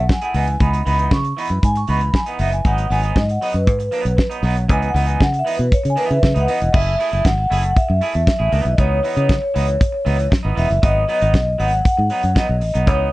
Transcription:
Already playing: F#5
0.09 G#5, muted clean electric guitar stroke, kick, snare
0.21 A3 E4 G#4 F#5, closed hi-hat
0.34 C#2 E3 B3 D#4 G#5, open hi-hat
0.47 G#5, muted clean electric guitar stroke, closed hi-hat
0.60 C#2 E3 B3 D#4 B5, kick, closed hi-hat
0.73 closed hi-hat
0.86 C#2 E3 B3 D#4 B5, open hi-hat
0.98 E3 B3 D#4, closed hi-hat
1.11 C#3 C#6, kick, snare
1.24 muted clean electric guitar stroke, closed hi-hat
1.37 E3 B3 D#4 B5, open hi-hat
1.49 F#2, muted clean electric guitar stroke, closed hi-hat
1.63 G#2 G#5, muted clean electric guitar stroke, kick, closed hi-hat
1.75 C#6, muted clean electric guitar stroke, closed hi-hat
1.87 C#2 E3 B3 D#4 B5, open hi-hat
2.01 B5, muted clean electric guitar stroke, closed hi-hat
2.14 G#5, muted clean electric guitar stroke, kick, snare
2.26 E3 B3 D#4 F#5, closed hi-hat
2.39 F#1 E3 B3 D#4 E5, open hi-hat
2.52 G#5, muted clean electric guitar stroke, closed hi-hat
2.65 G#1 F#3 B3 D#4 F#5, kick, closed hi-hat
2.78 closed hi-hat
2.90 G#1 F#3 B3 D#4 G#5, open hi-hat
3.02 F#3 B3 D#4, closed hi-hat
3.16 G#2 D#5, kick, snare
3.29 F#5, muted clean electric guitar stroke, closed hi-hat
3.41 F#3 B3 D#4 D#5, open hi-hat
3.54 F#2 B4, muted clean electric guitar stroke, closed hi-hat
3.67 G#2, muted clean electric guitar stroke, kick, closed hi-hat
3.79 muted clean electric guitar stroke, closed hi-hat
3.91 F#3 B3 D#4, open hi-hat
4.04 B1, muted clean electric guitar stroke, closed hi-hat
4.17 muted clean electric guitar stroke, kick, snare
4.30 F#3 B3 D#4, closed hi-hat
4.43 B1 F#3 B3 D#4, open hi-hat
4.57 muted clean electric guitar stroke, closed hi-hat
4.69 C#2 E3 B3 D#4 G#5, kick, closed hi-hat
4.82 closed hi-hat
4.89 F#5
4.94 C#2 E3 B3 D#4, open hi-hat
5.06 E3 B3 D#4 G#5, closed hi-hat
5.21 C#3 F#5, kick, snare
5.33 muted clean electric guitar stroke, closed hi-hat
5.39 E5
5.45 E3 B3 D#4, open hi-hat
5.56 B2 B4, muted clean electric guitar stroke, closed hi-hat
5.72 C#5, kick, closed hi-hat
5.84 C#3, muted clean electric guitar stroke, closed hi-hat
5.90 G#5
5.96 E3 B3 D#4 B4, open hi-hat
6.07 C#3 E5, muted clean electric guitar stroke, closed hi-hat
6.23 C#3, muted clean electric guitar stroke, kick, snare
6.34 C#2 E3 B3 D#4, closed hi-hat
6.40 F#5
6.48 E3 B3 D#4 D#5, open hi-hat
6.61 E1, muted clean electric guitar stroke, closed hi-hat
6.73 F#1 A3 E4 G#4 E5, kick, crash
6.99 A3 E4 G#4, open hi-hat
7.11 F#1 A3 E4 G#4, closed hi-hat
7.25 G#1 F#5, kick, snare, closed hi-hat
7.38 muted clean electric guitar stroke
7.50 F#1 A3 E4 G#4, open hi-hat
7.63 muted clean electric guitar stroke, closed hi-hat
7.70 F#5
7.76 E5, muted clean electric guitar stroke, muted fingered electric bass stroke, kick, closed hi-hat
7.89 F#2, muted clean electric guitar stroke
8.01 A3 E4 G#4, open hi-hat
8.14 E2, muted clean electric guitar stroke, closed hi-hat
8.27 E5, muted clean electric guitar stroke, kick, snare, closed hi-hat
8.39 A1 A3 E4 G#4
8.52 C#2 E3 B3 D#4, open hi-hat
8.65 B1, muted clean electric guitar stroke, closed hi-hat
8.72 D#5
8.78 C#2 E3 B3 D#4 C#5, kick, closed hi-hat
9.03 E3 B3 D#4, open hi-hat
9.16 C#3 E3 B3 D#4, closed hi-hat
9.29 C#5, kick, snare, closed hi-hat
9.42 muted clean electric guitar stroke
9.54 C#2 E3 B3 D#4, open hi-hat
9.67 muted clean electric guitar stroke, closed hi-hat
9.80 muted clean electric guitar stroke, kick, closed hi-hat
9.92 muted clean electric guitar stroke
10.05 C#2 E3 B3 D#4, open hi-hat
10.18 muted clean electric guitar stroke, closed hi-hat
10.30 muted clean electric guitar stroke, kick, snare, closed hi-hat
10.43 G#1 E3 B3 D#4
10.55 E1 E3 B3 D#4 E5, open hi-hat
10.69 F#1, muted clean electric guitar stroke, closed hi-hat
10.82 G#1 F#3 B3 D#4 D#5, kick, closed hi-hat
11.08 F#3 B3 D#4 D#5, open hi-hat
11.21 G#1 F#3 B3 D#4, closed hi-hat
11.34 B1, kick, snare, closed hi-hat
11.47 muted clean electric guitar stroke
11.58 G#1 F#3 B3 D#4 F#5, open hi-hat
11.72 muted clean electric guitar stroke, closed hi-hat
11.85 F#5, muted clean electric guitar stroke, muted fingered electric bass stroke, kick, closed hi-hat
11.97 G#2, muted clean electric guitar stroke
12.10 F#3 B3 D#4, open hi-hat
12.23 F#2, muted clean electric guitar stroke, closed hi-hat
12.35 F#3 B3 D#4 D#5, kick, snare, closed hi-hat
12.48 B1, muted clean electric guitar stroke
12.61 A1, muted clean electric guitar stroke, open hi-hat
12.74 B1 F#3 B3 D#4, closed hi-hat
12.87 C#2 E3 B3 D#4 C#5, kick, closed hi-hat

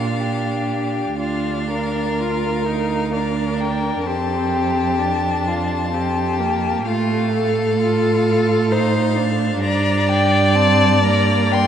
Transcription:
Already playing: A#2 D4 F4 F5
0.20 G4
1.19 D2 D4 F4 F5
1.72 A#4
2.19 F4
2.66 D#4
3.12 D4 A#4 F5
3.60 G5
4.06 F2 C4 G4 A5
4.99 D4
5.48 F4
5.93 C4 G4
6.39 A#3
6.86 A2 A3 F4 F5
7.34 A4
7.79 F4
8.71 D#4 C5 F5
9.16 D4
9.62 G2 D5 A#5
10.09 G5
10.55 C4 A5
11.04 A#3 A#5
11.52 G5 C6

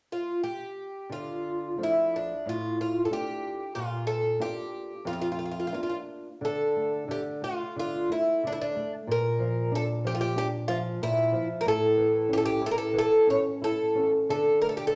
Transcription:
0.12 F4
0.44 G4
1.09 D3 F4
1.78 F3 A3 D4
1.83 E4
2.16 D4
2.46 A2 F4
2.81 F4
3.05 A4
3.10 A3 D4 F4 G4
3.75 A#2 F4
4.07 A4
4.39 A#3 D4 F4 G4
5.05 F2 F4
5.13 F4
5.21 F4
5.32 F4
5.39 F4
5.45 F4
5.51 F4
5.60 F4
5.67 F4
5.72 A#3 D4 F4
5.83 F4
5.90 F4
6.41 D3 A4
6.76 A3
7.08 D3 G4
7.42 A3 F4
7.76 D3 F4
8.09 A3 E4
8.43 D3 D4
8.52 E4
8.61 D4
8.76 A3
9.07 A#2
9.11 A#4
9.39 F3
9.72 D4 A4
10.04 F3 G4
10.15 F4
10.21 G4
10.36 D4 G4
10.68 F3 F4
11.02 A#2 E4
11.32 F3
11.61 A#4
11.65 A2 A4
11.97 E3
12.29 C#4
12.33 G4
12.38 A4
12.45 G4
12.61 E4
12.66 A4
12.71 A#4
12.78 A4
12.93 E3
12.98 A4
13.27 C#4 C#5
13.61 E4 A4
13.95 C#4
14.29 D3 A4
14.61 A3 A#4
14.69 A4
14.77 G4
14.87 A4

